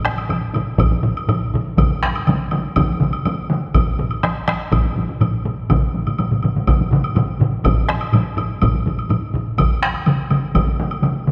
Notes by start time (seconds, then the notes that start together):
0.06 taiko rim, taiko high
0.18 taiko high, high woodblock
0.30 taiko low-mid, taiko high, high woodblock
0.42 taiko high
0.54 taiko low-mid, taiko high, high woodblock
0.66 taiko high
0.79 taiko, taiko low-mid, taiko high, high woodblock
0.91 taiko high
1.04 taiko low-mid, taiko high
1.16 taiko high, high woodblock
1.29 taiko low-mid, taiko high, high woodblock
1.42 taiko high
1.54 taiko low-mid, taiko high
1.66 taiko high
1.78 taiko, taiko mid, taiko high, high woodblock
1.91 taiko high
2.03 taiko rim, taiko high
2.15 taiko high, high woodblock
2.27 taiko mid, taiko high, high woodblock
2.42 taiko high
2.51 taiko mid, taiko high, high woodblock
2.66 taiko high
2.76 taiko, taiko mid, taiko high, high woodblock
2.89 taiko high
3.01 taiko mid, taiko high
3.13 taiko high, high woodblock
3.25 taiko mid, taiko high, high woodblock
3.38 taiko high
3.50 taiko mid, taiko high
3.63 taiko high
3.74 taiko, taiko low-mid, taiko high, high woodblock
3.87 taiko high
3.99 taiko low-mid, taiko high
4.11 taiko high, high woodblock
4.24 taiko rim, taiko high, high woodblock
4.36 taiko high
4.48 taiko rim, taiko high, high woodblock
4.60 taiko high
4.72 taiko, taiko low-mid, taiko high, high woodblock
4.85 taiko high
4.97 taiko low-mid, taiko high
5.09 taiko low-mid, taiko high
5.21 taiko low-mid, taiko high, high woodblock
5.34 taiko high
5.46 taiko low-mid, taiko high
5.58 taiko high
5.70 taiko, taiko low-mid, taiko mid, taiko high, high woodblock
5.83 taiko high
5.94 taiko high
6.06 taiko low-mid, taiko mid, taiko high, high woodblock
6.18 taiko low-mid, taiko mid, taiko high, high woodblock
6.31 taiko low-mid, taiko mid, taiko high
6.43 taiko low-mid, taiko mid, taiko high, high woodblock
6.55 taiko low-mid, taiko mid, taiko high
6.67 taiko, taiko low-mid, taiko mid, taiko high, high woodblock
6.81 taiko high
6.91 taiko low-mid, taiko mid, taiko high
7.04 taiko high, high woodblock
7.15 taiko low-mid, taiko mid, taiko high, high woodblock
7.30 taiko high
7.40 taiko low-mid, taiko mid, taiko high
7.54 taiko high
7.65 taiko, taiko low-mid, taiko high, high woodblock
7.78 taiko high
7.89 taiko rim, taiko high
8.01 taiko high, high woodblock
8.13 taiko low-mid, taiko high, high woodblock
8.27 taiko high
8.37 taiko low-mid, taiko high, high woodblock
8.51 taiko high
8.62 taiko, taiko low-mid, taiko high, high woodblock
8.74 taiko high
8.86 taiko low-mid, taiko high
8.98 taiko high, high woodblock
9.09 taiko low-mid, taiko high, high woodblock
9.22 taiko high
9.34 taiko low-mid, taiko high
9.46 taiko high
9.58 taiko, taiko mid, taiko high, high woodblock
9.70 taiko high
9.82 taiko rim, taiko high
9.94 taiko high, high woodblock
10.06 taiko mid, taiko high, high woodblock
10.18 taiko high
10.30 taiko mid, taiko high, high woodblock
10.43 taiko high
10.55 taiko, taiko mid, taiko high, high woodblock
10.67 taiko high
10.80 taiko mid, taiko high
10.91 taiko high, high woodblock
11.02 taiko mid, taiko high, high woodblock
11.16 taiko high
11.27 taiko mid